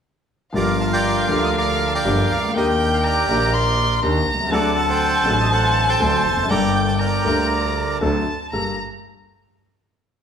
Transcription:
0.53 1.26 G1 medium
0.53 1.26 G2 medium
0.53 1.25 F3 medium
0.53 1.25 A#3 medium
0.53 1.26 D4 soft
0.53 1.52 F4 medium
0.53 1.27 G4 medium
0.53 0.92 A#4 soft
0.53 0.81 D5 medium
0.53 2.55 F5 medium
0.80 0.86 A5 medium
0.93 1.56 A#4 medium
0.93 1.56 D5 medium
0.93 1.31 G5 medium
1.27 2.01 D2 medium
1.27 2.01 D3 medium
1.27 2.00 F3 medium
1.27 2.00 A#3 medium
1.27 2.01 D4 medium
1.27 2.02 G4 medium
1.27 1.43 F5 medium
1.44 1.49 D#5 medium
1.57 1.93 A#4 soft
1.57 1.93 D5 soft
1.57 1.84 F5 medium
1.87 1.93 A5 medium
1.95 2.52 A#4 medium
1.95 2.52 D5 medium
1.95 2.32 G5 medium
2.04 2.26 G1 medium
2.04 2.25 G2 medium
2.04 2.25 F3 medium
2.04 2.25 A#3 medium
2.04 2.25 D4 medium
2.04 2.26 G4 medium
2.30 2.54 C#2 medium
2.30 2.54 F5 medium
2.36 2.42 C2 soft
2.42 2.48 C#2 soft
2.49 2.55 D2 medium
2.54 3.25 D#2 medium
2.54 3.26 D#2 medium
2.54 2.55 D#3 medium
2.54 3.25 D#3 medium
2.54 3.25 A#3 medium
2.54 3.26 D4 medium
2.54 3.51 G4 medium
2.54 3.26 G4 medium
2.54 3.04 A#4 medium
2.54 2.67 D#5 medium
2.54 3.05 G5 medium
2.82 2.92 G5 medium
2.94 2.99 F5 medium
3.04 4.00 A#4 soft
3.04 4.00 D5 soft
3.04 3.51 G5 medium
3.04 3.55 A#5 medium
3.27 3.99 A#1 medium
3.27 3.99 A#2 medium
3.27 3.98 D#3 medium
3.27 3.99 A#3 medium
3.27 3.99 D4 medium
3.27 4.00 G4 medium
3.53 4.04 C6 medium
4.02 4.24 D#2 medium
4.02 4.24 D#3 medium
4.02 4.24 A#3 medium
4.02 4.24 D4 medium
4.02 4.24 G4 medium
4.02 4.53 A#5 medium
4.27 4.51 C2 soft
4.34 4.40 B1 soft
4.40 4.46 C2 medium
4.46 4.52 C#2 medium
4.46 5.21 F#3 medium
4.51 5.22 D2 medium
4.51 5.22 D3 medium
4.51 5.22 C4 medium
4.51 5.22 D4 medium
4.51 5.47 A4 medium
4.51 5.23 A4 medium
4.51 4.76 D5 medium
4.51 5.25 F#5 medium
4.51 6.51 A5 medium
4.79 4.84 A5 medium
4.89 5.50 C5 medium
4.89 5.28 G5 medium
5.23 5.96 A1 medium
5.23 5.96 A2 medium
5.23 5.95 F#3 medium
5.23 5.96 C4 medium
5.23 5.96 D4 medium
5.23 5.39 F#5 medium
5.27 5.97 A4 medium
5.40 5.52 D#5 medium
5.51 6.46 A4 medium
5.51 5.88 C5 medium
5.51 5.89 F#5 medium
5.89 6.46 C5 medium
5.89 6.23 G5 medium
6.00 6.21 D2 medium
6.00 6.21 D3 medium
6.00 6.21 F#3 medium
6.00 6.21 C4 medium
6.00 6.21 D4 medium
6.00 6.21 A4 medium
6.24 6.49 F1 medium
6.24 6.50 A5 medium
6.31 6.37 E2 soft
6.37 6.43 F2 medium
6.43 6.49 F#2 medium
6.48 7.21 G1 medium
6.48 7.21 G2 medium
6.48 7.20 G3 medium
6.48 7.20 A#3 medium
6.48 7.21 D4 medium
6.48 7.22 A4 medium
6.48 6.99 D5 medium
6.48 7.00 G5 medium
6.48 6.73 A#5 medium
6.76 6.87 G5 medium
6.88 6.93 A5 medium
6.99 7.98 A#4 medium
6.99 7.98 D5 medium
6.99 7.47 G5 medium
6.99 8.00 A#5 medium
7.23 7.98 D2 medium
7.23 7.98 D3 medium
7.23 7.97 G3 medium
7.23 7.97 A#3 medium
7.23 7.98 D4 medium
7.23 7.99 A#4 medium
8.01 8.23 D2 medium
8.01 8.23 D3 medium
8.01 8.23 F#3 medium
8.01 8.23 C4 medium
8.01 8.23 D4 medium
8.01 8.23 A4 medium
8.01 8.49 A5 medium
8.52 8.74 G1 soft
8.52 8.74 G2 soft
8.52 8.74 A#3 soft
8.52 8.74 G4 soft
8.52 8.74 A4 soft
8.52 8.76 A#5 medium

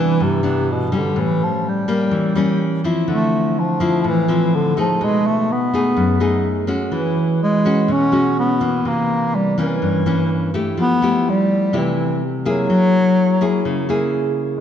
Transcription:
0.00 0.18 C3 medium
0.00 0.25 E3 medium
0.00 0.40 E3 medium
0.00 0.40 B3 medium
0.00 0.40 D4 medium
0.20 1.14 G2 medium
0.20 0.74 C3 medium
0.43 0.88 E3 medium
0.43 0.88 B3 medium
0.43 0.88 D4 medium
0.72 0.99 B2 medium
0.92 1.84 G3 medium
0.92 1.85 C#4 medium
0.97 1.21 D3 medium
1.16 2.10 A2 medium
1.16 1.45 E3 medium
1.44 1.70 F3 medium
1.69 2.86 G3 medium
1.88 2.32 G3 medium
1.88 2.32 A#3 medium
1.88 2.32 C#4 medium
2.11 3.05 E3 medium
2.35 2.80 G3 medium
2.35 2.80 A#3 medium
2.35 2.80 C#4 medium
2.84 3.76 F3 medium
2.84 3.77 C4 medium
2.84 3.77 E4 medium
3.08 4.02 D3 medium
3.08 3.61 A3 medium
3.59 4.06 F3 medium
3.80 4.24 F3 medium
3.80 4.25 C4 medium
3.80 4.25 E4 medium
4.04 4.98 A2 medium
4.08 4.57 E3 medium
4.28 4.73 F3 medium
4.28 4.73 C4 medium
4.28 4.73 E4 medium
4.56 4.78 D3 medium
4.77 5.05 F3 medium
4.77 5.69 A3 medium
4.77 5.69 D#4 medium
4.77 5.69 G#4 medium
5.01 5.94 B2 medium
5.01 5.28 G#3 medium
5.27 5.53 A3 medium
5.52 6.70 B3 medium
5.73 6.17 A3 medium
5.73 6.17 D#4 medium
5.73 6.17 G#4 medium
5.97 6.90 F#2 medium
6.20 6.65 A3 medium
6.20 6.65 D#4 medium
6.20 6.65 G#4 medium
6.67 7.60 G#3 medium
6.67 7.60 C#4 medium
6.67 7.61 F#4 medium
6.92 7.86 E3 medium
6.96 7.39 E3 medium
7.43 7.94 G#3 medium
7.65 8.09 G#3 medium
7.65 8.09 C#4 medium
7.65 8.09 F#4 medium
7.88 8.82 B2 medium
7.88 8.38 C#4 loud
8.12 8.56 G#3 medium
8.12 8.57 C#4 medium
8.12 8.57 F#4 medium
8.39 8.89 B3 medium
8.61 9.53 E3 medium
8.61 9.53 A#3 medium
8.85 9.79 C3 medium
8.85 9.37 A#3 loud
9.36 9.58 G3 medium
9.58 10.01 E3 medium
9.58 10.50 E3 medium
9.58 10.02 A#3 medium
9.58 10.02 C#4 medium
9.82 10.75 G2 medium
10.06 10.50 E3 medium
10.06 10.50 A#3 medium
10.06 10.50 C#4 medium
10.54 11.01 A3 medium
10.54 11.01 E4 medium
10.54 11.02 G4 medium
10.77 11.71 F3 medium
10.77 11.31 B3 loud
11.02 11.70 A3 medium
11.02 11.70 E4 soft
11.02 11.70 G4 medium
11.30 11.79 G3 medium
11.73 12.67 C3 medium
11.73 12.21 A3 medium
11.73 12.21 E4 medium
11.73 12.21 G4 medium
11.78 12.23 E3 medium
12.45 14.11 F#3 loud
12.45 13.38 A#3 medium
12.45 13.38 E4 medium
12.45 13.38 G#4 medium
12.70 13.63 F#3 medium
13.41 13.85 A#3 medium
13.41 13.85 E4 medium
13.41 13.86 G#4 medium
13.65 14.59 C#3 medium
13.89 14.59 A#3 medium
13.89 14.59 E4 medium
13.89 14.60 G#4 medium

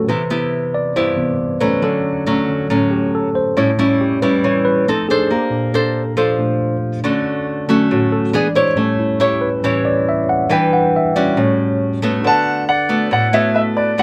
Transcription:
0.00 0.10 F#3 soft
0.00 0.10 C#4 soft
0.00 0.10 F#4 medium
0.00 0.10 G4 medium
0.07 1.15 C3 soft
0.07 0.93 C3 medium
0.07 1.15 E3 soft
0.07 0.21 B3 medium
0.07 0.21 E4 medium
0.07 0.22 G4 medium
0.07 1.60 B4 soft
0.30 0.92 B3 medium
0.30 0.92 E4 medium
0.30 0.92 G4 medium
0.74 0.95 D5 medium
0.96 1.81 G2 medium
0.96 1.57 B3 medium
0.96 1.58 E4 medium
0.96 1.58 G4 medium
0.96 1.57 C5 medium
1.16 1.36 C3 soft
1.16 1.36 E3 soft
1.16 1.37 B3 soft
1.60 2.25 F#3 medium
1.60 2.26 A3 medium
1.60 2.26 C#4 medium
1.60 1.82 B4 medium
1.82 2.11 D3 soft
1.82 2.67 D3 medium
1.82 2.11 F#3 soft
1.82 2.12 C#4 soft
1.82 2.24 A4 medium
2.26 2.66 F#3 medium
2.26 2.67 A3 medium
2.26 2.67 C#4 medium
2.49 2.68 D3 soft
2.49 2.68 F#3 soft
2.49 2.68 C#4 soft
2.70 3.55 A2 medium
2.70 3.28 F#3 medium
2.70 3.28 A3 medium
2.70 3.29 C#4 medium
2.91 3.12 G4 medium
3.15 3.35 A4 medium
3.35 3.56 C5 medium
3.57 4.41 A2 medium
3.57 3.69 G3 medium
3.57 3.70 C#4 medium
3.57 3.70 E4 medium
3.57 3.78 C#5 medium
3.77 4.07 A2 soft
3.77 4.07 G3 soft
3.77 4.19 G3 medium
3.77 4.08 C#4 soft
3.77 4.19 C#4 medium
3.77 4.00 E4 medium
3.77 4.19 E4 medium
4.01 4.22 G4 medium
4.22 4.84 G3 medium
4.22 4.84 C#4 medium
4.22 4.84 E4 medium
4.22 4.43 B4 medium
4.44 4.85 E3 medium
4.44 4.65 C#5 medium
4.65 4.86 B4 medium
4.87 5.16 F3 soft
4.87 5.16 A3 soft
4.87 5.06 C4 medium
4.87 5.16 D#4 soft
4.87 5.06 D#4 medium
4.87 5.06 A4 medium
4.87 5.09 A4 medium
5.09 5.71 D4 medium
5.09 5.30 G#4 medium
5.09 5.71 A4 medium
5.09 5.72 C5 medium
5.31 6.15 A#3 medium
5.31 6.57 G4 medium
5.50 6.13 A#2 soft
5.50 6.14 D4 medium
5.74 6.02 D4 medium
5.74 6.02 A4 medium
5.74 6.02 C5 medium
6.17 7.02 F3 medium
6.17 6.75 D4 medium
6.17 6.76 A4 medium
6.17 6.76 C5 medium
6.38 6.58 A#2 soft
6.38 6.58 A3 soft
6.38 6.59 D4 soft
7.04 7.89 D3 medium
7.04 7.66 A3 soft
7.04 7.66 C#4 medium
7.04 7.66 F#4 medium
7.68 8.30 D3 soft
7.68 8.31 F#3 soft
7.68 8.32 A3 medium
7.68 8.31 C#4 medium
7.68 8.33 C#4 medium
7.68 8.33 F#4 medium
7.91 8.32 A2 medium
7.91 8.13 F#4 medium
8.12 8.33 A4 medium
8.33 8.75 E3 soft
8.33 8.75 G#3 soft
8.33 8.47 B3 medium
8.33 8.47 D4 medium
8.33 8.76 D4 medium
8.33 8.47 G#4 medium
8.33 8.56 D5 medium
8.55 9.17 E4 medium
8.55 9.17 G4 medium
8.55 8.77 C5 medium
8.55 9.18 C#5 medium
8.76 9.05 A2 soft
8.76 9.06 G3 soft
8.76 9.62 A3 medium
8.76 9.06 C#4 medium
8.76 8.99 C#5 medium
9.00 9.20 E4 medium
9.20 9.48 E4 medium
9.20 9.49 G4 medium
9.20 9.42 G4 medium
9.20 9.49 C#5 medium
9.41 9.63 B4 medium
9.63 9.83 A2 soft
9.63 10.48 E3 medium
9.63 9.83 G3 soft
9.63 9.83 C#4 soft
9.63 10.22 E4 medium
9.63 10.22 G4 medium
9.63 10.23 C#5 medium
9.63 9.86 C#5 medium
9.85 10.07 D5 medium
10.09 10.29 E5 medium
10.29 10.50 F#5 medium
10.49 11.35 E3 medium
10.49 10.79 E3 soft
10.49 10.79 G3 soft
10.49 11.12 D4 medium
10.49 10.80 D4 medium
10.49 11.12 G4 medium
10.49 11.12 B4 medium
10.49 10.73 G5 medium
10.73 10.94 F#5 medium
10.96 11.16 E5 medium
11.16 11.99 G3 medium
11.16 11.99 C#4 medium
11.16 11.99 F#4 medium
11.16 11.37 D5 medium
11.37 11.66 A2 soft
11.37 12.22 A2 medium
11.37 11.66 G3 soft
11.37 11.67 C#4 medium
11.37 11.99 C#5 medium
12.02 12.64 A3 medium
12.02 12.64 B3 medium
12.02 12.65 F#4 medium
12.22 13.09 D3 medium
12.22 14.03 D4 soft
12.22 14.03 A4 soft
12.22 14.03 B4 soft
12.22 12.64 F#5 medium
12.27 14.03 F#5 medium
12.27 12.70 A5 loud
12.68 13.08 D5 medium
12.68 13.09 F#5 medium
12.89 13.29 A3 medium
12.89 13.29 B3 medium
12.89 13.29 F#4 medium
13.11 13.96 A2 medium
13.11 13.31 D5 medium
13.11 13.34 F#5 medium
13.31 13.94 A3 medium
13.31 13.95 B3 medium
13.31 13.95 F#4 medium
13.31 13.52 C#5 medium
13.31 13.54 E5 medium
13.53 13.59 B4 medium
13.53 13.61 E5 medium
13.74 13.95 B4 medium
13.74 13.99 D5 medium
13.96 14.03 D3 medium
13.96 14.03 A3 medium
13.96 14.03 B3 soft
13.96 14.03 F#4 medium
13.96 14.03 D5 medium
13.96 14.03 F#5 loud

